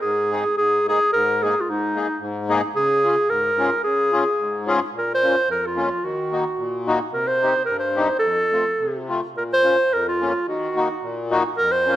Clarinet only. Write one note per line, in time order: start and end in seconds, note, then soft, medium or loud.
0.01 0.54 G#4 medium
0.57 0.85 G#4 medium
0.89 1.12 G#4 medium
1.13 1.44 A#4 medium
1.42 1.62 G#4 medium
1.61 1.71 F4 soft
1.70 2.23 D#4 medium
2.76 3.31 G#4 medium
3.30 3.83 A#4 medium
3.84 4.64 G#4 medium
4.98 5.10 A#4 medium
5.14 5.50 C5 loud
5.51 5.68 A#4 medium
5.66 6.06 F4 medium
6.05 6.88 F#4 medium
7.13 7.29 A#4 medium
7.28 7.65 C5 loud
7.65 7.78 A#4 medium
7.79 8.18 C5 medium
8.19 9.03 A4 medium
9.37 9.44 A#4 medium
9.53 9.95 C5 loud
9.93 10.07 A#4 medium
10.08 10.46 F4 medium
10.48 11.28 F#4 medium
11.57 11.73 A#4 loud
11.72 11.96 C5 loud